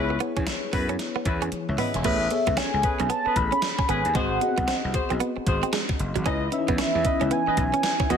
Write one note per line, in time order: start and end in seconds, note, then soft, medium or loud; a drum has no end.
0.00 0.16 C#2 loud
0.00 0.20 B3 medium
0.00 0.19 C#4 medium
0.00 0.19 E4 medium
0.00 0.21 E4 medium
0.00 0.21 G#4 medium
0.00 0.19 B4 loud
0.00 2.06 B4 medium
0.00 0.22 C#5 medium
0.10 muted clean electric guitar stroke soft
0.20 0.32 B3 medium
0.20 0.98 B3 medium
0.20 0.98 E4 medium
0.20 0.98 G#4 medium
0.20 0.99 C#5 medium
0.20 closed hi-hat medium
0.37 0.45 E2 medium
0.37 0.44 C#4 medium
0.37 kick medium
0.37 closed hi-hat soft
0.47 muted clean electric guitar stroke soft
0.47 snare loud
0.47 closed hi-hat medium
0.73 0.95 F#2 medium
0.73 0.84 B3 medium
0.73 0.92 C#4 medium
0.73 0.92 E4 medium
0.73 0.92 B4 medium
0.73 kick medium
0.73 open hi-hat medium
0.89 0.96 C#4 medium
0.89 closed hi-hat soft
0.99 snare medium
0.99 closed hi-hat medium
1.16 1.23 B3 medium
1.25 1.48 E2 medium
1.25 1.45 C#4 medium
1.25 1.45 E4 medium
1.25 1.45 B4 medium
1.25 muted clean electric guitar stroke soft
1.25 kick loud
1.25 closed hi-hat medium
1.42 1.49 C#4 medium
1.42 closed hi-hat medium
1.52 muted slap bass stroke soft
1.52 closed hi-hat medium
1.52 high tom medium
1.69 1.77 C#2 medium
1.69 1.79 C#5 medium
1.69 1.78 E5 medium
1.78 1.90 B3 medium
1.78 1.97 C#4 medium
1.78 1.97 E4 medium
1.78 1.97 B4 medium
1.78 1.94 D#5 medium
1.78 1.94 F#5 medium
1.78 mid tom medium
1.78 open hi-hat medium
1.94 2.03 E1 medium
1.94 2.20 E5 medium
1.94 2.20 G#5 medium
1.94 closed hi-hat medium
1.94 floor tom medium
2.04 2.27 A1 loud
2.04 2.16 A3 medium
2.04 2.26 B3 medium
2.04 2.29 C#4 loud
2.04 2.29 G#4 medium
2.04 2.26 G#4 medium
2.04 2.26 A4 medium
2.04 2.29 B4 loud
2.04 2.26 C#5 medium
2.04 2.59 E5 loud
2.04 kick loud
2.04 closed hi-hat medium
2.04 crash medium
2.31 3.09 B3 medium
2.31 3.09 G#4 medium
2.31 3.09 A4 medium
2.31 3.09 C#5 medium
2.31 muted clean electric guitar stroke soft
2.31 closed hi-hat medium
2.47 2.56 C#2 medium
2.47 2.54 B3 medium
2.47 kick medium
2.47 closed hi-hat soft
2.57 2.69 C#4 loud
2.57 3.09 G#5 loud
2.57 snare loud
2.57 closed hi-hat medium
2.74 2.82 C#2 loud
2.83 3.02 C#4 medium
2.83 3.03 G#4 medium
2.83 3.03 B4 medium
2.83 muted clean electric guitar stroke soft
2.83 kick medium
2.83 closed hi-hat medium
3.00 3.08 B1 medium
3.00 3.07 C#4 medium
3.00 closed hi-hat soft
3.10 3.21 B3 medium
3.10 3.38 A5 loud
3.10 closed hi-hat medium
3.26 3.41 C#4 medium
3.26 3.41 G#4 medium
3.26 3.41 B4 medium
3.26 muted clean electric guitar stroke medium
3.26 muted slap bass stroke soft
3.36 3.50 A1 medium
3.36 3.91 B5 loud
3.36 kick medium
3.36 closed hi-hat medium
3.52 3.59 C#4 medium
3.52 closed hi-hat medium
3.62 muted clean electric guitar stroke soft
3.62 snare loud
3.62 closed hi-hat medium
3.79 3.86 C#4 medium
3.79 kick loud
3.88 4.03 G#1 medium
3.88 4.00 B3 medium
3.88 4.08 C#4 medium
3.88 4.08 G#4 medium
3.88 4.08 B4 medium
3.88 4.17 G#5 loud
3.88 closed hi-hat medium
4.05 4.17 D#2 medium
4.05 closed hi-hat medium
4.15 4.37 G#1 loud
4.15 4.26 G#3 medium
4.15 4.36 C4 medium
4.15 4.40 F#4 medium
4.15 4.36 F#4 medium
4.15 4.40 G#4 medium
4.15 4.37 G#4 medium
4.15 4.40 C5 loud
4.15 4.37 D#5 medium
4.15 5.21 F#5 loud
4.15 kick loud
4.15 closed hi-hat medium
4.41 4.49 B3 medium
4.41 5.19 F#4 medium
4.41 5.20 G#4 medium
4.41 5.20 D#5 medium
4.41 muted clean electric guitar stroke soft
4.41 closed hi-hat medium
4.48 5.22 C4 medium
4.58 4.66 C2 medium
4.58 4.65 B3 medium
4.58 kick loud
4.58 closed hi-hat soft
4.68 4.79 C4 loud
4.68 snare loud
4.68 closed hi-hat medium
4.84 4.93 C2 medium
4.94 5.13 F#4 medium
4.94 5.13 G#4 medium
4.94 5.13 C5 medium
4.94 muted clean electric guitar stroke soft
4.94 kick medium
4.94 closed hi-hat medium
5.10 5.19 B1 medium
5.10 5.17 C4 medium
5.10 closed hi-hat soft
5.20 5.32 B3 medium
5.20 closed hi-hat medium
5.37 muted clean electric guitar stroke soft
5.37 muted slap bass stroke soft
5.46 5.61 G#1 medium
5.46 5.66 F#4 medium
5.46 5.66 G#4 medium
5.46 5.66 C5 medium
5.46 kick medium
5.46 closed hi-hat medium
5.63 5.70 C4 medium
5.63 closed hi-hat medium
5.73 5.84 G#3 medium
5.73 snare loud
5.73 closed hi-hat medium
5.89 muted clean electric guitar stroke soft
5.89 kick medium
5.99 6.13 F#1 medium
5.99 closed hi-hat medium
6.16 6.24 G#1 medium
6.16 6.23 F#3 medium
6.16 closed hi-hat medium
6.25 6.48 C#2 loud
6.25 8.08 E3 medium
6.25 8.08 B3 medium
6.25 8.08 C#4 medium
6.25 6.47 C#4 medium
6.25 6.37 C#4 loud
6.25 6.50 E4 medium
6.25 8.08 E4 medium
6.25 6.47 E4 medium
6.25 6.50 B4 medium
6.25 6.47 B4 medium
6.25 6.51 D#5 loud
6.25 6.47 D#5 loud
6.25 kick loud
6.25 closed hi-hat medium
6.52 7.30 C#4 medium
6.52 6.60 D#4 medium
6.52 7.30 B4 medium
6.52 7.30 E5 loud
6.52 muted clean electric guitar stroke soft
6.52 closed hi-hat medium
6.59 7.33 E4 medium
6.68 6.77 E2 loud
6.68 6.75 B3 medium
6.68 kick medium
6.68 closed hi-hat medium
6.78 6.90 C#4 medium
6.78 7.33 E5 loud
6.78 snare loud
6.78 closed hi-hat medium
6.95 7.03 E2 medium
7.04 7.24 E4 medium
7.04 7.24 B4 medium
7.04 7.24 D#5 medium
7.04 muted clean electric guitar stroke soft
7.04 kick loud
7.04 closed hi-hat medium
7.21 7.30 C#2 medium
7.21 7.28 C#4 medium
7.21 closed hi-hat soft
7.31 7.42 B3 medium
7.31 7.57 G#5 loud
7.31 closed hi-hat medium
7.47 7.62 E4 medium
7.47 7.62 B4 medium
7.47 7.62 D#5 medium
7.47 muted clean electric guitar stroke medium
7.47 muted slap bass stroke soft
7.57 7.71 B1 medium
7.57 8.12 G#5 loud
7.57 kick loud
7.57 closed hi-hat medium
7.74 7.81 C#4 medium
7.74 closed hi-hat medium
7.83 muted clean electric guitar stroke soft
7.83 snare loud
7.83 closed hi-hat medium
8.00 8.07 C#4 medium
8.00 kick loud
8.09 8.17 E2 loud
8.09 8.17 E3 medium
8.09 8.17 F#3 medium
8.09 8.17 G#3 medium
8.09 8.17 B3 medium
8.09 8.17 E4 medium
8.09 8.17 F#4 medium
8.09 8.17 G#4 medium
8.09 8.17 D#5 medium
8.09 8.17 F#5 loud
8.09 closed hi-hat medium